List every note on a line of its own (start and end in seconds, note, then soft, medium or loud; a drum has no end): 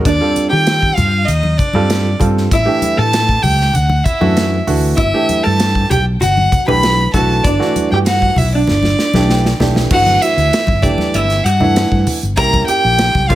0.05 0.18 D#2 medium
0.05 0.49 D4 medium
0.05 0.48 D5 medium
0.05 kick loud
0.05 closed hi-hat medium
0.21 1.09 G3 medium
0.21 1.09 C4 medium
0.21 1.09 F4 medium
0.21 1.09 A4 medium
0.36 muted fretless electric bass stroke soft
0.36 closed hi-hat medium
0.49 0.90 D#3 medium
0.49 0.96 G4 medium
0.49 0.96 G5 medium
0.67 snare loud
0.67 closed hi-hat medium
0.83 kick medium
0.95 1.23 G2 medium
0.95 1.26 F4 medium
0.95 1.26 F5 medium
0.95 closed hi-hat soft
0.95 high conga medium
0.95 low conga medium
1.25 1.54 D#2 medium
1.25 1.57 D#4 medium
1.25 1.59 D#5 medium
1.25 closed hi-hat medium
1.25 low conga medium
1.43 high conga medium
1.57 2.20 D4 medium
1.57 2.20 D5 medium
1.57 kick medium
1.57 closed hi-hat medium
1.57 low conga medium
1.73 2.13 G2 medium
1.73 2.08 G3 medium
1.73 2.08 C4 medium
1.73 2.08 F4 medium
1.73 2.08 A4 medium
1.73 high conga medium
1.90 snare loud
1.90 closed hi-hat medium
2.19 2.47 G2 medium
2.19 2.51 G3 medium
2.19 2.51 C4 medium
2.19 2.51 F4 medium
2.19 2.51 A4 medium
2.19 kick medium
2.19 closed hi-hat medium
2.19 low conga medium
2.37 snare soft
2.51 2.65 A1 medium
2.51 2.97 E4 medium
2.51 3.00 E5 medium
2.51 kick loud
2.51 closed hi-hat medium
2.65 3.54 E3 medium
2.65 3.54 A3 medium
2.65 3.55 D4 medium
2.65 3.54 G4 medium
2.82 muted fretless electric bass stroke soft
2.82 closed hi-hat medium
2.82 high conga medium
2.97 3.36 A2 medium
2.97 3.44 A4 medium
2.97 3.44 A5 medium
3.13 snare loud
3.13 closed hi-hat medium
3.29 kick medium
3.42 3.70 C#2 medium
3.42 3.73 G4 medium
3.42 3.76 G5 medium
3.42 open hi-hat medium
3.42 high conga medium
3.42 low conga medium
3.61 snare soft
3.73 4.01 D2 medium
3.73 4.04 F#4 medium
3.73 4.06 F#5 medium
3.73 closed hi-hat medium
3.73 low conga medium
3.90 high conga medium
4.04 4.67 E4 medium
4.04 4.67 E5 medium
4.04 kick medium
4.04 closed hi-hat medium
4.04 low conga medium
4.21 4.59 F#2 medium
4.21 4.54 E3 medium
4.21 4.54 A3 medium
4.21 4.54 D4 medium
4.21 4.54 F#4 medium
4.21 high conga medium
4.37 snare medium
4.37 closed hi-hat medium
4.67 4.93 D2 medium
4.67 4.98 E3 medium
4.67 4.98 A3 medium
4.67 4.98 D4 medium
4.67 4.98 F#4 medium
4.67 open hi-hat medium
4.67 low conga medium
4.96 5.11 G1 medium
4.96 5.44 E4 medium
4.96 5.45 E5 medium
4.96 kick loud
4.96 closed hi-hat medium
5.14 6.01 E3 medium
5.14 6.02 A3 medium
5.14 6.02 D4 medium
5.14 6.02 G4 medium
5.29 muted fretless electric bass stroke soft
5.29 closed hi-hat medium
5.29 high conga medium
5.43 5.84 G2 medium
5.43 5.90 A4 medium
5.43 5.90 A5 medium
5.60 snare loud
5.60 closed hi-hat medium
5.75 kick medium
5.90 6.16 B1 medium
5.90 5.99 G4 medium
5.90 6.04 G5 medium
5.90 closed hi-hat medium
5.90 high conga medium
5.90 low conga medium
6.21 6.47 G1 medium
6.21 6.64 F#4 medium
6.21 6.64 F#5 medium
6.21 closed hi-hat medium
6.21 low conga medium
6.37 high conga medium
6.52 kick medium
6.52 closed hi-hat soft
6.52 low conga medium
6.67 7.06 B1 medium
6.67 7.01 E3 medium
6.67 7.01 A3 medium
6.67 7.01 D4 medium
6.67 7.01 G4 medium
6.67 7.10 B4 medium
6.67 7.10 B5 loud
6.67 high conga medium
6.83 snare loud
6.83 closed hi-hat medium
7.13 7.39 B1 medium
7.13 7.47 E3 medium
7.13 7.47 A3 medium
7.13 7.47 D4 medium
7.13 7.47 F#4 medium
7.13 7.43 A4 medium
7.13 7.45 A5 medium
7.13 kick medium
7.13 closed hi-hat medium
7.13 low conga medium
7.44 7.58 G1 medium
7.44 7.92 D4 medium
7.44 7.90 D5 medium
7.44 kick loud
7.44 closed hi-hat medium
7.59 8.47 E3 medium
7.59 8.47 A3 medium
7.59 8.48 D4 medium
7.59 8.48 F#4 medium
7.59 snare soft
7.75 muted fretless electric bass stroke soft
7.75 closed hi-hat medium
7.75 high conga medium
7.91 8.29 G2 medium
7.91 7.99 G4 medium
7.91 7.98 G5 medium
8.06 8.39 F#4 medium
8.06 8.39 F#5 medium
8.06 snare loud
8.06 closed hi-hat medium
8.22 kick medium
8.36 8.63 B1 medium
8.36 8.53 E4 medium
8.36 8.53 E5 medium
8.36 open hi-hat medium
8.36 high conga medium
8.36 low conga medium
8.54 9.57 D4 medium
8.54 9.57 D5 medium
8.67 8.94 G1 medium
8.67 snare medium
8.67 low conga medium
8.83 snare soft
8.83 high conga medium
8.99 snare medium
9.13 9.52 B1 medium
9.13 9.47 E3 medium
9.13 9.47 A3 medium
9.13 9.47 D4 medium
9.13 9.47 G4 medium
9.13 snare medium
9.13 high conga medium
9.30 9.58 G5 medium
9.30 snare medium
9.45 snare medium
9.60 9.85 B1 medium
9.60 9.89 E3 medium
9.60 9.90 A3 medium
9.60 9.89 D4 medium
9.60 9.91 G4 medium
9.60 9.89 D5 medium
9.60 snare medium
9.60 low conga medium
9.75 snare medium
9.75 high conga medium
9.91 10.16 G1 loud
9.91 10.57 E3 medium
9.91 10.57 A3 medium
9.91 10.57 D4 medium
9.91 10.57 F#4 medium
9.91 10.24 F#4 medium
9.91 10.23 F#5 loud
9.91 kick loud
9.91 crash loud
10.06 closed hi-hat soft
10.06 high conga medium
10.22 10.85 E4 medium
10.22 10.84 E5 loud
10.22 closed hi-hat medium
10.37 10.49 D2 medium
10.37 closed hi-hat soft
10.53 snare loud
10.53 closed hi-hat medium
10.67 10.93 G1 medium
10.67 kick medium
10.67 high conga medium
10.82 11.38 E3 medium
10.82 11.38 A3 medium
10.82 11.38 D4 medium
10.82 11.15 D4 medium
10.82 11.38 G4 medium
10.82 11.15 D5 medium
10.82 kick medium
10.82 closed hi-hat medium
10.82 low conga medium
10.98 snare soft
10.98 high conga medium
11.14 11.40 G1 medium
11.14 11.46 E4 medium
11.14 11.46 E5 medium
11.14 closed hi-hat medium
11.30 snare soft
11.30 closed hi-hat soft
11.44 11.83 G2 medium
11.44 12.07 F#4 medium
11.44 12.06 F#5 medium
11.44 closed hi-hat medium
11.60 12.15 E3 medium
11.60 12.15 A3 medium
11.60 12.15 D4 medium
11.60 12.15 E4 medium
11.60 low conga medium
11.76 snare loud
11.76 closed hi-hat medium
11.91 12.04 G2 medium
11.91 kick medium
12.06 muted fretless electric bass stroke soft
12.06 open hi-hat medium
12.06 low conga medium
12.23 12.35 G1 medium
12.23 closed hi-hat soft
12.37 12.63 C2 loud
12.37 13.03 A#3 medium
12.37 13.03 C#4 medium
12.37 13.03 E4 medium
12.37 13.03 G4 medium
12.37 12.66 A#4 medium
12.37 12.65 A#5 loud
12.37 kick loud
12.37 closed hi-hat medium
12.53 kick medium
12.53 closed hi-hat soft
12.53 high conga medium
12.66 13.26 G4 medium
12.66 13.30 G5 loud
12.66 muted fretless electric bass stroke soft
12.66 closed hi-hat medium
12.84 13.10 A#1 medium
12.99 snare loud
12.99 closed hi-hat medium
13.15 13.35 C2 medium
13.15 kick medium
13.15 snare soft
13.15 high conga medium
13.28 13.35 A#3 medium
13.28 13.35 C4 medium
13.28 13.35 C#4 medium
13.28 13.35 F4 medium
13.28 13.35 G4 medium
13.28 13.35 F5 medium
13.28 kick medium
13.28 closed hi-hat medium
13.28 low conga medium